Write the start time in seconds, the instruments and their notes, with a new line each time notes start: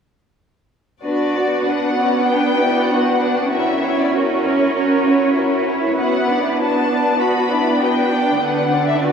1.03 viola section B3, violin section D4 B4 D5, cello section F#4
1.36 violin section F#4 D5
1.66 cello section D4, violin section D4 B4 F#5
1.98 cello section C#4, violin section F#4 D5
2.27 cello section D4, violin section D4 B4 G5
2.59 cello section E4, violin section F#4 D5
2.90 violin section D4 B4 F#5, cello section F#4
3.21 cello section D4, violin section F#4 D5
3.51 viola section C#4, cello section E4, violin section F#4 A#4 E5
3.84 violin section E4 C#5
3.99 violin section D5
4.13 cello section F#4, violin section F#4 A#4 C#5
4.43 violin section E4 C#5, cello section A#4
4.74 violin section F#4 A#4, cello section A#4
5.05 violin section E4 C#5, cello section F#4
5.37 cello section E4, violin section F#4 A#4
5.68 violin section E4 C#5
5.98 viola section B3, violin section F#4 B4 F#5
6.29 violin section D4 D5
6.59 cello section D4, violin section F#4 B4 A5
6.91 violin section D4 D5
7.20 cello section F#4, violin section F#4 B4 B5
7.50 violin section D4 D5, cello section E4
7.80 cello section D4, violin section F#4 B4 G5
8.11 violin section D4 D5
8.41 viola section D3, violin section B3 B4 F#5
8.71 violin section D4 D5
8.88 violin section E5
9.02 violin section B3 B4 D5, cello section F#4